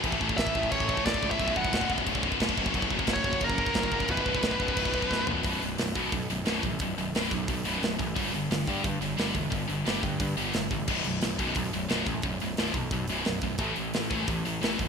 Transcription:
<<
  \new Staff \with { instrumentName = "Lead electric guitar" } { \time 4/4 \key b \minor \tempo 4 = 177 r4 e''4 cis''4 d''8. e''16~ | e''8 fis''4 r2 r8 | r4 cis''4 ais'2 | b'2.~ b'8 r8 |
r1 | r1 | r1 | r1 |
r1 | r1 | r1 | }
  \new Staff \with { instrumentName = "Distorted electric guitar" } { \clef bass \time 4/4 \key b \minor <a, e a>8 <a, e a>8 <a, e a>8 <a, e a>8 <a, e a>8 <a, e a>8 <a, e a>8 <a, e a>8 | <b,, fis, b,>8 <b,, fis, b,>8 <b,, fis, b,>8 <b,, fis, b,>8 <b,, fis, b,>8 <b,, fis, b,>8 <b,, fis, b,>8 <fis, cis fis>8 | <fis, cis fis>8 <fis, cis fis>8 <fis, cis fis>8 <fis, cis fis>8 <fis, cis fis>8 <fis, cis fis>8 <fis, cis fis>8 <fis, cis fis>8 | <b,, fis, b,>8 <b,, fis, b,>8 <b,, fis, b,>8 <b,, fis, b,>8 <b,, fis, b,>8 <b,, fis, b,>8 <b,, fis, b,>8 <b,, fis, b,>8 |
<b,, fis, b,>8 <b,, fis,>8 <b,, fis,>8 <b,, fis, b,>8 <b,, fis,>8 <b,, fis,>8 <b,, fis, b,>8 <b,, fis,>8 | <b,, fis,>8 <b,, fis,>8 <b,, fis, b,>8 <b,, fis,>8 <b,, fis,>8 <b,, fis, b,>8 <b,, fis,>8 <b,, fis,>8 | <g, d g>8 <g, d>8 <g, d>8 <g, d g>8 <g, d>8 <g, d>8 <g, d g>8 <g, d>8 | <g, d>8 <g, d>8 <g, d g>8 <g, d>8 <g, d>8 <g, d g>8 <g, d>8 <g, d>8 |
<b,, fis, b,>8 <b,, fis,>8 <b,, fis,>8 <b,, fis, b,>8 <b,, fis,>8 <b,, fis,>8 <b,, fis, b,>8 <b,, fis,>8 | <b,, fis,>8 <b,, fis,>8 <b,, fis, b,>8 <b,, fis,>8 <b,, fis,>8 <b,, fis, b,>8 <b,, fis,>8 <b,, fis,>8 | <a, e a>8 <a, e>8 <a, e>8 <a, e a>8 <a, e>8 <a, e>8 <a, e a>8 <a, e>8 | }
  \new Staff \with { instrumentName = "Picked electric bass" } { \clef bass \time 4/4 \key b \minor a,,8 a,,8 a,,8 a,,8 a,,4 a,,8 cis,8 | b,,,8 b,,,8 b,,,8 b,,,8 b,,,4 b,,,8 fis,,8 | fis,,8 fis,,8 fis,,8 fis,,8 fis,,4 fis,,8 fis,,8 | b,,,8 b,,,8 b,,,8 b,,,8 b,,,4 b,,,8 b,,,8 |
b,,,8 b,,,8 b,,,8 b,,8 b,,8 b,,,8 b,,,8 a,,8 | b,,,8 b,,,8 b,,,8 b,,8 b,,8 b,,,8 b,,,8 a,,8 | g,,8 g,,8 g,,8 g,8 g,8 g,,8 g,,8 e,,8 | g,,8 g,,8 g,,8 g,8 g,8 g,,8 g,,8 a,,8 |
b,,,8 b,,,8 b,,,8 b,,8 b,,8 b,,,8 b,,,8 a,,8 | b,,,8 b,,,8 b,,,8 b,,8 b,,8 b,,,8 b,,,8 b,,,8 | a,,8 a,,8 a,,8 a,,8 a,,8 a,,8 a,,8 g,,8 | }
  \new DrumStaff \with { instrumentName = "Drums" } \drummode { \time 4/4 <cymc bd>16 bd16 bd16 bd16 <cymc bd sn>16 bd16 bd16 bd16 <cymc bd>16 bd16 bd16 bd16 <cymc bd sn>16 bd16 bd16 bd16 | <cymc bd>16 bd16 bd16 bd16 <cymc bd sn>16 bd16 bd16 bd16 <cymc bd>16 bd16 bd16 bd16 <cymc bd sn>16 bd16 bd16 bd16 | <cymc bd>16 bd16 bd16 bd16 <cymc bd sn>16 bd16 bd16 bd16 <cymc bd>16 bd16 bd16 bd16 <cymc bd sn>16 bd16 bd16 bd16 | <cymc bd>16 bd16 bd16 bd16 <cymc bd sn>16 bd16 bd16 bd16 <cymc bd>16 bd16 bd16 bd16 <bd sn>8 tomfh8 |
<hho bd>8 hho8 <hho sn>8 <hho bd>8 <hho bd>8 hho8 <hho sn>8 <hho bd>8 | <hho bd>8 hho8 <hho sn>8 <hho bd>8 <hho bd>8 hho8 <hho sn>8 <hho bd>8 | <hho bd>8 hho8 <hho sn>8 <hho bd>8 <hho bd>8 hho8 <hho sn>8 <hho bd>8 | <hho bd>8 hho8 <hho sn>8 <hho bd>8 <hho bd>8 hho8 <hho sn>8 <hho bd>8 |
<cymc bd>8 hho8 <hho sn>8 <hho bd>8 <hho bd>8 hho8 <hho sn>8 <hho bd>8 | <hho bd>8 hho8 <hho sn>8 <hho bd>8 <hho bd>8 hho8 <hho sn>8 <hho bd>8 | <hho bd>8 hho8 <hho sn>8 <hho bd>8 <hho bd>8 hho8 <hho sn>8 <hho bd>8 | }
>>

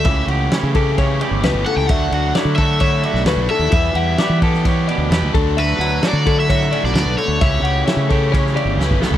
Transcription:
<<
  \new Staff \with { instrumentName = "Overdriven electric guitar" } { \time 4/4 \key d \major \tempo 4 = 130 e''8 r2. fis''16 g''16 | fis''4 r8 e''4. r8 e''8~ | e''4. r2 r8 | b'4 d''8. e''4 d''16 d''8 cis''8~ |
cis''2. r4 | }
  \new Staff \with { instrumentName = "Clean electric guitar" } { \time 4/4 \key d \major e''8 fis''8 e''8 a'8 cis''8 d''8 b'8 a'8 | e''8 fis''8 d''8 a'8 cis''8 d''8 b'8 a'8 | e''8 fis''8 d''8 a'8 cis''8 d''8 b'8 a'8 | e''8 fis''8 d''8 a'8 cis''8 d''8 b'8 a'8 |
e''8 fis''8 e''8 a'8 cis''8 d''8 b'8 a'8 | }
  \new Staff \with { instrumentName = "Clean electric guitar" } { \time 4/4 \key d \major << { fis'8 g'8 cis'8 g'8 cis'8 g'4. | r8 fis'8 e'8 fis'8 e'8 fis'8 cis'16 e'16 a16 b16 | r8 g'8 g'8 g'8 g'8 g'8 g'8 r8 | fis'8 e'8 fis'8 e'8 fis'8 cis'16 e'16 b8 r8 |
r8 g'8 cis'8 g'8 cis'8 g'8 cis'8 b8 | } \\ { cis4 e4. cis8 b,8 cis8 | d4 fis4. a,4. | e4 b4. b,4 d8~ | d8 fis4. a,4. d8 |
cis4 e4. cis4. | } >> }
  \new Staff \with { instrumentName = "Overdriven electric guitar" } { \time 4/4 \key d \major <cis e a e' g'>4. <cis e a e' g'>4. <cis e a e' g'>4 | <d fis a d' fis'>4. <d fis a d' fis'>4. <d fis a d' fis'>4 | <e g b e'>4. <e g b e'>4. <e g b e'>8 <d fis a d' fis'>8~ | <d fis a d' fis'>4 <d fis a d' fis'>4. <d fis a d' fis'>4 r8 |
<cis e a e' g'>4. <cis e a e' g'>4. <cis e a e' g'>4 | }
  \new Staff \with { instrumentName = "Fingered electric bass" } { \clef bass \time 4/4 \key d \major cis,8 cis,8 r16 cis4. g,,16 cis,16 g,,16 r16 cis,16 | d,8 d,8 r16 d4. b,,16 d,16 b,,16 r16 ees,16 | e,8 e,8 r16 e4. d,16 e,16 d,16 d,8~ | d,8 d,8 r16 d4. b,,16 d,16 b,,16 r16 d,16 |
cis,8 cis,8 r16 cis4. g,,16 cis,16 g,,16 r16 cis,16 | }
  \new DrumStaff \with { instrumentName = "Drums" } \drummode { \time 4/4 <bd cymr>8 cymr8 <cymr sn>8 <bd cymr>8 <bd cymr>8 cymr8 <cymr sn>8 cymr8 | <bd cymr>8 cymr8 <cymr sn>8 <bd cymr>8 <bd cymr>8 cymr16 sn16 <cymr sn>8 cymr8 | <bd cymr>8 cymr8 <cymr sn>8 <bd cymr>16 sn16 <bd cymr>8 cymr8 <cymr sn>8 <bd cymr>8 | cymr8 cymr8 <cymr sn>8 <bd cymr>8 <bd cymr>16 sn16 cymr16 sn16 <cymr sn>8 cymr8 |
<bd cymr>8 cymr8 <cymr sn>8 <bd cymr>8 <bd cymr>16 sn16 cymr8 sn16 bd16 sn16 tomfh16 | }
>>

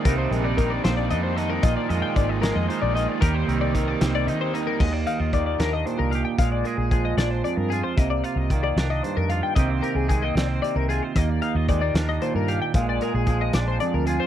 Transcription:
<<
  \new Staff \with { instrumentName = "Clean electric guitar" } { \time 6/8 \key ees \major \tempo 4. = 76 bes'16 c''16 bes'16 d''16 bes'16 d''16 c''16 d''16 ees''16 c''16 ees''16 bes'16 | ees''16 d''16 ees''16 g''16 d''16 ees''16 bes'16 ees''16 c''16 d''16 ees''16 d''16 | bes'16 c''16 bes'16 d''16 bes'16 d''16 c''16 d''16 ees''16 c''16 ees''16 bes'16 | ees''16 d''16 f''16 ees''16 d''16 d''16 bes'16 ees''16 c''16 bes'16 f''16 g''16 |
f''16 d''16 bes'16 aes'16 aes'16 ees''16 d''16 c''16 d''16 bes'16 aes'16 c''16 | ees''16 d''16 f''16 ees''16 d''16 d''16 bes'16 ees''16 c''16 bes'16 f''16 g''16 | ees''16 c''16 bes'16 aes'16 aes'16 ees''16 d''16 c''16 d''16 bes'16 aes'16 c''16 | ees''16 d''16 f''16 ees''16 d''16 d''16 bes'16 ees''16 c''16 bes'16 f''16 g''16 |
f''16 d''16 bes'16 aes'16 aes'16 ees''16 d''16 c''16 d''16 bes'16 aes'16 c''16 | }
  \new Staff \with { instrumentName = "Overdriven electric guitar" } { \time 6/8 \key ees \major <g c' d' ees'>8 <g c' d' ees'>8 <g c' d' ees'>8 <g c' d' ees'>8 <g c' d' ees'>8 <g c' d' ees'>8 | <f bes ees' f'>8 <f bes ees' f'>8 <f bes ees' f'>8 <f bes ees' f'>8 <f bes ees' f'>8 <f bes ees' f'>8 | <ees g bes ees'>8 <ees g bes ees'>8 <ees g bes ees'>8 <ees g bes ees'>8 <ees g bes ees'>8 <ees g bes ees'>8 | r2. |
r2. | r2. | r2. | r2. |
r2. | }
  \new Staff \with { instrumentName = "Clean electric guitar" } { \time 6/8 \key ees \major << { <ees bes d' ees'>8 aes16 bes8. bes8 d'4 | f'8 aes4 aes8 ees'4 | g'8 c'4 c'8 ees'4 | aes16 bes16 ees'16 f'16 bes8 d'4 g'8 |
aes8 aes'8 aes8 d'4 f'8 | bes8 f'8 bes8 d'4 f'8 | <ees bes c' g'>8 g'8 aes16 bes16 c'4 f'8 | bes8 ees'16 f'16 aes16 bes16 d'4 g'8 |
aes8 aes'8 aes8 d'4 f'8 | } \\ { c4 ees4. ees8 | bes,4 ees4. ees8 | ees,4 ees4. ees8 | ees,4 ees4 bes,4 |
bes,4 f4 f,4 | c4 ees4 g,4 | c4 ees4 c4 | ees,4 ees4 bes,4 |
bes,4 f4 f,4 | } >> }
  \new Staff \with { instrumentName = "Fingered electric bass" } { \clef bass \time 6/8 \key ees \major c,8 bes,,4 bes,,8 f,4 | bes,,16 r16 f,16 r16 aes,,8. f,16 r16 bes,,8 r16 | ees,8 c,4 c,8 ees4 | ees,8 r16 ees,8. ees,8 r16 c,8 r16 |
bes,,8 r16 bes,,8. bes,,8 r16 g,8 r16 | c,8 r16 c,8. c,8 r16 f,8 r16 | c,8 r16 c,8. c,8 r16 c,8 r16 | ees,8 r16 ees,8. ees,8 r16 g,8 r16 |
bes,,8 r16 bes,,8. bes,,8 r16 d,8 r16 | }
  \new DrumStaff \with { instrumentName = "Drums" } \drummode { \time 6/8 <hh bd>8 hh8 <hh bd>8 <hh sn>8 hh8 hh8 | <hh bd>8 hh8 <hh bd>8 <hh sn>8 hh8 hh8 | <hh bd>8 hh8 <hh bd>8 <hh sn>8 hh8 hh8 | <cymc bd>8 hh8 <hh bd>8 <hh sn>8 hh8 hh8 |
<hh bd>8 hh8 <hh bd>8 <hh sn>8 hh8 hh8 | <hh bd>8 hh8 <hh bd>8 <hh sn>8 hh8 hh8 | <hh bd>8 hh8 <hh bd>8 <hh sn>8 hh8 hh8 | <hh bd>8 hh8 <hh bd>8 <hh sn>8 hh8 hh8 |
<hh bd>8 hh8 <hh bd>8 <hh sn>8 hh8 hh8 | }
>>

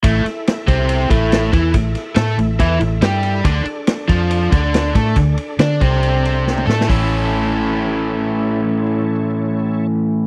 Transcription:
<<
  \new Staff \with { instrumentName = "Tonewheel organ" } { \time 4/4 \key a \mixolydian \tempo 4 = 140 <e' a' e''>1~ | <e' a' e''>1 | <d' a' d''>1~ | <d' a' d''>1 |
<e' a' cis''>1~ | <e' a' cis''>1 | }
  \new Staff \with { instrumentName = "Overdriven electric guitar" } { \time 4/4 \key a \mixolydian <a, a>8 r4 <c c'>4 <a, a>4 <e e'>8 | a,8 r8 <a a'>8 a,8 <e e'>8 a,8 <g g'>4 | <d d'>8 r4 <f f'>4 <d d'>4 <a a'>8 | d8 r8 <d' d''>8 <c c'>2 <a a'>8 |
<a, e a cis' e' a'>1~ | <a, e a cis' e' a'>1 | }
  \new Staff \with { instrumentName = "Fingered electric bass" } { \clef bass \time 4/4 \key a \mixolydian a,,8 r4 c,4 a,,4 e,8 | a,,8 r8 a,8 a,,8 e,8 a,,8 g,4 | d,8 r4 f,4 d,4 a,8 | d,8 r8 d8 c,2 a,8 |
a,,1~ | a,,1 | }
  \new DrumStaff \with { instrumentName = "Drums" } \drummode { \time 4/4 <bd cymr>8 <cymr sn>8 <cymr sn>8 <bd cymr>8 cymr8 <bd cymr>8 <cymr sn>8 <bd cymr>8 | <bd cymr>8 <cymr sn>8 <cymr sn>8 cymr8 <bd cymr>8 cymr8 <cymr sn>8 <cymr sn>8 | <bd cymr>8 cymr8 <cymr sn>8 <bd cymr>8 cymr8 <bd cymr>8 <cymr sn>8 <bd cymr sn>8 | <bd cymr>8 cymr8 <cymr sn>8 <bd cymr>8 cymr8 cymr8 sn16 toml16 sn16 sn16 |
<hho bd>4 r4 r4 r4 | r4 r4 r4 r4 | }
>>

